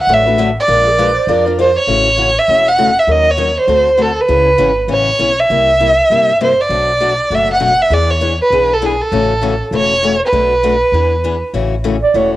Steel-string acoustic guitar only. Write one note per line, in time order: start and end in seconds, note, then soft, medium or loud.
0.08 0.26 D3 medium
0.08 0.26 F#3 medium
0.08 0.26 A3 medium
0.08 0.26 D4 medium
0.08 0.26 F#4 medium
0.08 0.25 B4 medium
0.26 0.38 A3 soft
0.26 0.38 D4 soft
0.26 0.38 F#4 soft
0.26 0.38 B4 medium
0.38 0.49 D3 medium
0.38 0.49 F#3 medium
0.38 0.49 A3 medium
0.38 0.49 D4 medium
0.38 0.49 F#4 loud
0.38 0.49 B4 medium
0.68 0.88 F3 medium
0.68 0.88 G#3 medium
0.68 0.88 D4 medium
0.68 0.88 F4 medium
0.68 0.88 A#4 medium
0.98 1.09 F3 medium
0.98 1.09 G#3 medium
0.98 1.09 D4 medium
0.98 1.09 F4 medium
0.98 1.10 A#4 medium
1.28 1.46 F3 medium
1.28 1.46 G#3 medium
1.28 1.46 D4 medium
1.28 1.46 F4 medium
1.28 1.45 A#4 medium
1.46 1.58 D4 soft
1.46 1.58 F4 medium
1.46 1.58 A#4 medium
1.59 1.69 F3 medium
1.59 1.69 G#3 medium
1.59 1.70 D4 medium
1.59 1.70 F4 medium
1.59 1.70 A#4 medium
1.88 2.08 C#3 medium
1.88 2.08 E3 medium
1.88 2.08 A3 medium
1.88 2.08 C#4 medium
1.88 2.08 F#4 medium
2.17 2.29 C#3 medium
2.17 2.29 E3 medium
2.17 2.29 A3 medium
2.17 2.29 C#4 medium
2.17 2.29 F#4 medium
2.48 2.68 C#3 soft
2.48 2.68 E3 medium
2.48 2.68 A3 medium
2.48 2.68 C#4 medium
2.48 2.68 F#4 medium
2.78 2.89 C#3 medium
2.78 2.89 E3 medium
2.78 2.90 A3 medium
2.78 2.89 C#4 medium
2.78 2.90 F#4 medium
3.07 3.28 D#3 medium
3.07 3.28 F#3 medium
3.07 3.28 C#4 medium
3.07 3.28 D#4 medium
3.07 3.28 A#4 medium
3.37 3.49 D#3 medium
3.37 3.49 F#3 medium
3.37 3.49 C#4 medium
3.37 3.49 D#4 medium
3.37 3.50 A#4 medium
3.68 3.88 D3 medium
3.68 3.88 A3 medium
3.68 3.88 C4 medium
3.68 3.89 F#4 medium
3.68 3.89 A4 medium
3.97 4.09 D3 medium
3.97 4.10 A3 medium
3.97 4.10 C4 medium
3.97 4.10 F#4 medium
3.97 4.10 A4 medium
4.28 4.49 C#3 medium
4.28 4.49 E3 medium
4.28 4.49 B3 medium
4.28 4.49 C#4 medium
4.28 4.49 G#4 medium
4.58 4.70 C#3 medium
4.58 4.70 E3 medium
4.58 4.70 B3 medium
4.58 4.70 C#4 medium
4.58 4.70 G#4 medium
4.88 5.09 C#3 medium
4.88 5.09 E3 medium
4.88 5.09 B3 medium
4.88 5.09 C#4 medium
4.88 5.09 G#4 medium
5.19 5.30 C#3 medium
5.19 5.31 E3 medium
5.19 5.31 B3 medium
5.19 5.31 C#4 medium
5.19 5.31 G#4 medium
5.50 5.70 C3 medium
5.50 5.70 G3 medium
5.50 5.70 A#3 medium
5.50 5.70 E4 medium
5.50 5.70 G4 medium
5.80 5.91 C3 medium
5.80 5.91 G3 medium
5.80 5.91 A#3 medium
5.80 5.91 E4 medium
5.80 5.91 G4 medium
6.11 6.30 C3 medium
6.11 6.31 G3 medium
6.11 6.31 A#3 medium
6.11 6.31 E4 medium
6.11 6.31 G4 medium
6.41 6.51 C3 medium
6.41 6.52 G3 medium
6.41 6.52 A#3 medium
6.41 6.52 E4 medium
6.41 6.52 G4 medium
6.70 6.90 B2 medium
6.70 6.90 F#3 medium
6.70 6.90 A3 medium
6.70 6.90 D4 medium
6.70 6.90 F#4 medium
7.00 7.12 B2 medium
7.00 7.12 F#3 medium
7.00 7.12 A3 medium
7.00 7.12 D4 medium
7.00 7.12 F#4 medium
7.31 7.51 B2 medium
7.31 7.51 F#3 medium
7.31 7.51 A3 medium
7.31 7.51 D4 medium
7.31 7.51 F#4 medium
7.60 7.71 B2 medium
7.60 7.72 F#3 medium
7.60 7.71 A3 medium
7.60 7.72 D4 medium
7.60 7.72 F#4 medium
7.90 8.11 E3 medium
7.90 8.11 B3 medium
7.90 8.11 D4 medium
7.90 8.11 G#4 medium
8.21 8.32 E3 medium
8.21 8.32 B3 medium
8.21 8.32 D4 medium
8.21 8.33 G#4 medium
8.52 8.72 E3 medium
8.52 8.72 B3 medium
8.52 8.72 D4 medium
8.52 8.72 G#4 medium
8.82 8.93 E3 medium
8.82 8.93 B3 medium
8.82 8.93 D4 medium
8.82 8.93 G#4 medium
9.12 9.32 C#3 medium
9.12 9.32 E3 medium
9.12 9.32 A3 medium
9.12 9.32 C#4 medium
9.12 9.32 F#4 medium
9.42 9.53 C#3 medium
9.42 9.53 E3 medium
9.42 9.53 A3 medium
9.42 9.54 C#4 medium
9.42 9.54 F#4 medium
9.72 9.92 C#3 medium
9.72 9.93 E3 medium
9.72 9.93 A3 medium
9.72 9.93 C#4 medium
9.72 9.93 F#4 medium
10.03 10.14 C#3 medium
10.03 10.14 E3 medium
10.03 10.14 A3 medium
10.03 10.14 C#4 medium
10.03 10.14 F#4 medium
10.32 10.53 B2 medium
10.32 10.53 F#3 medium
10.32 10.53 A3 medium
10.32 10.53 D4 medium
10.32 10.53 F#4 medium
10.63 10.74 B2 medium
10.63 10.74 F#3 medium
10.63 10.74 A3 medium
10.63 10.74 D4 medium
10.63 10.75 F#4 medium
10.93 11.13 E3 medium
10.93 11.14 B3 medium
10.93 11.14 D4 medium
10.93 11.14 G#4 medium
11.24 11.35 E3 medium
11.24 11.35 B3 medium
11.24 11.35 D4 medium
11.24 11.35 G#4 medium
11.54 11.74 C#3 medium
11.54 11.74 E3 medium
11.54 11.74 A3 medium
11.54 11.74 C#4 medium
11.54 11.74 F#4 medium
11.84 11.95 C#3 medium
11.84 11.95 E3 medium
11.84 11.95 A3 medium
11.84 11.96 C#4 medium
11.84 11.95 F#4 medium
12.14 12.34 C#3 medium
12.14 12.34 E3 medium
12.14 12.34 A3 medium
12.14 12.35 C#4 medium
12.14 12.35 F#4 medium